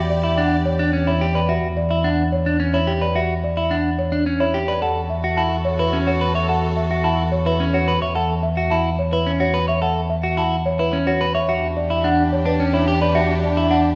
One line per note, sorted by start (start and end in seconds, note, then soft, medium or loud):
0.00 4.67 E2 medium
0.00 1.31 G4 medium
0.00 1.31 D5 medium
0.10 0.28 D5 medium
0.23 0.42 E4 medium
0.23 0.42 E5 medium
0.38 0.56 D4 medium
0.38 0.56 F#5 medium
0.65 0.83 C#5 medium
0.79 0.93 D4 medium
0.93 1.11 C#4 medium
1.07 1.25 E4 medium
1.07 1.25 C#5 medium
1.21 1.39 G4 medium
1.35 1.53 B4 medium
1.35 1.53 D5 medium
1.49 1.67 F#4 medium
1.49 1.67 E5 medium
1.77 1.95 D5 medium
1.90 2.08 E4 medium
1.90 2.08 E5 medium
2.04 2.22 D4 medium
2.04 2.22 F#5 medium
2.32 2.50 C#5 medium
2.46 2.59 D4 medium
2.60 2.78 C#4 medium
2.74 2.92 E4 medium
2.74 2.92 C#5 medium
2.87 3.06 G4 medium
3.01 3.20 B4 medium
3.01 3.20 D5 medium
3.15 3.33 F#4 medium
3.15 3.33 E5 medium
3.44 3.61 D5 medium
3.57 3.75 E4 medium
3.57 3.75 E5 medium
3.71 3.89 D4 medium
3.71 3.89 F#5 medium
3.99 4.17 C#5 medium
4.12 4.26 D4 medium
4.26 4.44 C#4 medium
4.40 4.58 E4 medium
4.40 4.58 C#5 medium
4.54 4.72 G4 medium
4.68 4.82 B4 medium
4.68 4.86 D5 medium
4.82 11.34 E2 medium
4.82 7.98 F#4 medium
4.82 5.00 A4 medium
4.82 7.98 A4 medium
4.82 5.00 F#5 medium
5.10 5.28 E5 medium
5.24 5.42 F#4 medium
5.24 5.42 E5 medium
5.37 5.56 E4 medium
5.37 5.56 F#5 medium
5.37 5.55 A5 medium
5.65 5.83 C#5 medium
5.79 5.97 E4 medium
5.79 5.97 B4 medium
5.93 6.11 C#4 medium
6.07 6.25 F#4 medium
6.07 6.25 C#5 medium
6.21 6.35 B4 medium
6.35 6.48 C#5 medium
6.35 6.53 E5 medium
6.49 6.67 A4 medium
6.49 6.67 F#5 medium
6.76 6.95 E5 medium
6.90 7.09 F#4 medium
6.90 7.08 E5 medium
7.04 7.22 E4 medium
7.04 7.22 F#5 medium
7.04 7.22 A5 medium
7.32 7.50 C#5 medium
7.46 7.64 E4 medium
7.46 7.64 B4 medium
7.60 7.78 C#4 medium
7.73 7.92 F#4 medium
7.73 7.92 C#5 medium
7.88 8.02 B4 medium
8.02 8.15 C#5 medium
8.02 8.20 E5 medium
8.15 8.33 A4 medium
8.15 8.33 F#5 medium
8.43 8.61 E5 medium
8.57 8.75 F#4 medium
8.57 8.75 E5 medium
8.70 8.89 E4 medium
8.70 8.89 F#5 medium
8.70 8.89 A5 medium
8.99 9.17 C#5 medium
9.12 9.31 E4 medium
9.12 9.31 B4 medium
9.27 9.45 C#4 medium
9.40 9.58 F#4 medium
9.40 9.58 C#5 medium
9.54 9.68 B4 medium
9.68 9.81 C#5 medium
9.68 9.86 E5 medium
9.82 10.00 A4 medium
9.82 10.00 F#5 medium
10.10 10.28 E5 medium
10.23 10.42 F#4 medium
10.23 10.42 E5 medium
10.37 10.56 E4 medium
10.37 10.56 F#5 medium
10.37 10.56 A5 medium
10.66 10.84 C#5 medium
10.79 10.97 E4 medium
10.79 10.97 B4 medium
10.93 11.11 C#4 medium
11.07 11.25 F#4 medium
11.07 11.25 C#5 medium
11.21 11.34 B4 medium
11.35 11.53 C#5 medium
11.35 11.47 E5 medium
11.48 13.95 E2 medium
11.48 13.95 D4 medium
11.48 11.67 F#4 medium
11.48 13.95 G4 medium
11.48 11.67 E5 medium
11.77 11.95 D5 medium
11.90 12.08 E4 medium
11.90 12.08 E5 medium
12.04 12.22 D4 medium
12.04 12.22 F#5 medium
12.33 12.50 C#5 medium
12.45 12.64 D4 medium
12.45 12.64 B4 medium
12.60 12.78 C#4 medium
12.73 12.87 E4 medium
12.73 12.92 C#5 medium
12.88 13.01 G4 medium
13.01 13.20 B4 medium
13.01 13.19 D5 medium
13.15 13.33 F#4 medium
13.15 13.33 E5 medium
13.43 13.61 D5 medium
13.57 13.75 E4 medium
13.57 13.75 E5 medium
13.71 13.89 D4 medium
13.71 13.89 F#5 medium